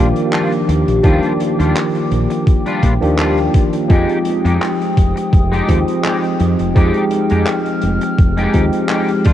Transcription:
Already playing: fretless electric bass A#1, tine electric piano F3 A#3 D4, ambient pad G4 F5 D6
0.00 tine electric piano D#3 G4
0.16 closed hi-hat
0.32 clean electric guitar G3 D4 F4, clap, closed hi-hat
0.52 closed hi-hat
0.68 fretless electric bass D#2, ambient pad G5, muted clean electric guitar stroke, closed hi-hat
0.87 fretless electric bass A#1, muted clean electric guitar stroke, closed hi-hat
1.03 fretless electric bass D#2, tine electric piano D#3 F3 A#3 D4 G4, clean electric guitar G3 D4 F4, kick, closed hi-hat
1.23 closed hi-hat
1.40 closed hi-hat
1.59 fretless electric bass D#2, clean electric guitar G3 D4 F4, closed hi-hat
1.76 clap, closed hi-hat
1.95 muted clean electric guitar stroke, closed hi-hat
2.11 fretless electric bass A#1, closed hi-hat
2.30 muted clean electric guitar stroke, closed hi-hat
2.47 muted clean electric guitar stroke, kick, closed hi-hat
2.66 clean electric guitar G3 D4 F4, closed hi-hat
2.83 fretless electric bass A#1, kick, closed hi-hat
3.01 fretless electric bass D#2, tine electric piano D#3 F3 A#3 D4 G4, closed hi-hat
3.18 clean electric guitar G3 D4 F4, clap, closed hi-hat
3.38 closed hi-hat
3.54 muted clean electric guitar stroke, kick, closed hi-hat
3.73 muted clean electric guitar stroke, closed hi-hat
3.89 fretless electric bass F2, tine electric piano F3 G#3 C4 D#4 G4, clean electric guitar G#3 D#4 G4, ambient pad G#3 D#6, kick, closed hi-hat
4.09 closed hi-hat
4.25 closed hi-hat
4.45 fretless electric bass F2, clean electric guitar G#3 D#4 G4, closed hi-hat
4.61 clap, closed hi-hat
4.80 muted clean electric guitar stroke, closed hi-hat
4.97 fretless electric bass F1, kick, closed hi-hat
5.16 muted clean electric guitar stroke, closed hi-hat
5.33 fretless electric bass F1, muted clean electric guitar stroke, kick, closed hi-hat
5.52 clean electric guitar G#3 D#4 G4, closed hi-hat
5.68 fretless electric bass D#2, tine electric piano F3 G#3 C4 D#4 G4, kick, closed hi-hat
5.88 closed hi-hat
6.04 clean electric guitar G#3 D#4 G4, clap, closed hi-hat
6.24 closed hi-hat
6.39 fretless electric bass F2, muted clean electric guitar stroke, closed hi-hat
6.59 fretless electric bass F1, muted clean electric guitar stroke, closed hi-hat
6.75 fretless electric bass F2, tine electric piano F3 G#3 C4 D#4 G4, clean electric guitar G#3 D#4 G4, ambient pad F6, kick, closed hi-hat
6.94 closed hi-hat
7.11 closed hi-hat
7.29 fretless electric bass F2, clean electric guitar G#3 D#4 G4, closed hi-hat
7.46 clap, closed hi-hat
7.66 muted clean electric guitar stroke, closed hi-hat
7.81 fretless electric bass F1, closed hi-hat
8.01 muted clean electric guitar stroke, closed hi-hat
8.18 fretless electric bass F1, muted clean electric guitar stroke, kick, closed hi-hat
8.37 clean electric guitar G#3 D#4 G4, closed hi-hat
8.54 fretless electric bass D#2, tine electric piano F3 G#3 C4 D#4 G4, kick, closed hi-hat
8.73 closed hi-hat
8.89 clean electric guitar G#3 D#4 G4, clap, closed hi-hat
9.08 closed hi-hat
9.25 fretless electric bass D#2, clean electric guitar G3 D4 F4, ambient pad G4 F5, kick, closed hi-hat

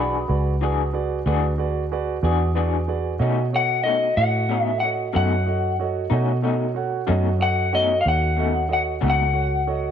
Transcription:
Already playing: fingered electric bass B1, clean electric guitar E3 D4 F#4 G#4 B5, grand piano F#4 G#4 B4
0.00 grand piano D5
0.28 fingered electric bass C#2, grand piano F#4 G#4 B4 D5
0.61 clean electric guitar E3 D4 F#4 G#4, grand piano F#4 G#4 B4 D5
0.93 grand piano F#4 G#4 B4 D5
1.26 fingered electric bass D2, clean electric guitar E3 D4 F#4 G#4, grand piano F#4 G#4 B4 D5
1.58 grand piano F#4 G#4 B4 D5
1.92 grand piano F#4 G#4 B4 D5
2.23 fingered electric bass E2, clean electric guitar D4 F#4 G#4, grand piano F#4 G#4 B4 D5
2.55 clean electric guitar E3 D4 F#4 G#4, grand piano F#4 G#4 B4 D5
2.88 grand piano F#4 G#4 B4 D5
3.19 fingered electric bass B2, clean electric guitar B2 A3 C#4 D#4, grand piano F#4 A4 C#5 D#5
3.53 grand piano F#4 A4 C#5 D#5, clean electric guitar F#5
3.84 clean electric guitar B2 A3 C#4 D#4 D#5, grand piano F#4 A4 C#5 D#5
4.17 fingered electric bass A2, grand piano F#4 A4 C#5 D#5, clean electric guitar F#5
4.49 clean electric guitar B2 A3 C#4 D#4, grand piano F#4 A4 C#5 D#5
4.63 clean electric guitar E5
4.80 grand piano F#4 A4 C#5 D#5, clean electric guitar F#5
5.13 fingered electric bass F#2, clean electric guitar B2 A3 C#4 D#4 F#5, grand piano F#4 A4 C#5 D#5
5.46 grand piano F#4 A4 C#5 D#5
5.80 grand piano F#4 A4 C#5 D#5
6.10 fingered electric bass B2, clean electric guitar A3 C#4 D#4, grand piano F#4 A4 C#5 D#5
6.42 clean electric guitar B2 A3 C#4 D#4, grand piano F#4 A4 C#5 D#5
6.75 grand piano F#4 A4 C#5 F#5
7.07 fingered electric bass F#2, clean electric guitar B2 A3 C#4 D#4, grand piano F#4 A4 C#5 D#5
7.39 grand piano F#4 A4 C#5 D#5, clean electric guitar F#5
7.73 clean electric guitar B2 A3 C#4 D#4 D#5, grand piano F#4 A4 C#5 D#5
8.01 clean electric guitar F5
8.05 fingered electric bass D#2, grand piano F#4 A4 C#5 F#5, clean electric guitar F#5
8.37 clean electric guitar B2 A3 C#4 D#4, grand piano F#4 A4 C#5 D#5
8.69 grand piano F#4 A4 C#5 D#5
8.73 clean electric guitar F#5
9.01 fingered electric bass C#2, clean electric guitar B2 A3 C#4 D#4, grand piano F#4 A4 C#5 F#5
9.10 clean electric guitar F#5
9.33 grand piano F#4 A4 C#5 F#5
9.67 grand piano F#4 A4 C#5 D#5

